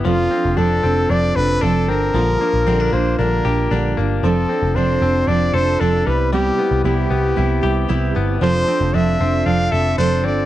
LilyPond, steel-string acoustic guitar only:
\new Staff \with { instrumentName = "Steel-string acoustic guitar" } { \time 4/4 \key f \lydian \tempo 4 = 115 <f c' d' a'>8 <c' d' a'>8 <f c' d' a'>8 <c' d' a'>8 <f c' d' a'>8 <c' d' a'>8 <f c' d' a'>8 <c' d' a'>8 | <bes, d g d' f'>8 <g d' f'>8 <bes, d g d' f'>8 <g d' f'>8 <d g d' f'>8 <g d' f'>8 <bes, d g d' f'>8 <g d' f'>8 | <f c' d' a'>8 <c' d' a'>8 <f c' d' a'>8 <c' d' a'>8 <f c' d' a'>8 <c' d' a'>8 <f c' d' a'>8 <b e' g'>8 | <c g b e' g'>8 <b e' g'>8 <c g b e' g'>8 <b e' g'>8 <g b e' g'>8 <b e' g'>8 <c g b e' g'>8 <b e' g'>8 |
<f c' d' a'>8 <c' d' a'>8 <f c' d' a'>8 <c' d' a'>8 <f c' d' a'>8 <c' d' a'>8 <f c' d' a'>8 <c' d' a'>8 | }